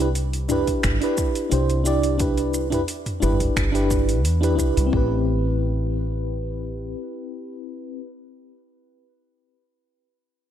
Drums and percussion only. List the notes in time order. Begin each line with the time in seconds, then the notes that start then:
0.00 shaker
0.15 open hi-hat, shaker
0.33 open hi-hat
0.49 mid tom, shaker
0.67 kick, open hi-hat, shaker
0.83 finger snap, kick, open hi-hat, shaker
1.02 open hi-hat
1.18 kick, shaker
1.35 open hi-hat, shaker
1.52 open hi-hat, shaker
1.70 open hi-hat, shaker
1.86 shaker
2.03 open hi-hat, shaker
2.20 kick, open hi-hat, shaker
2.38 open hi-hat, shaker
2.54 shaker
2.72 mid tom, open hi-hat, shaker
2.88 open hi-hat, shaker
3.06 mid tom, open hi-hat, shaker
3.22 mid tom, shaker
3.40 kick, open hi-hat, shaker
3.56 finger snap, kick, open hi-hat, shaker
3.75 open hi-hat, shaker
3.91 kick, shaker
4.09 open hi-hat, shaker
4.25 open hi-hat, shaker
4.43 open hi-hat, shaker
4.59 kick, shaker
4.77 open hi-hat, shaker
4.93 kick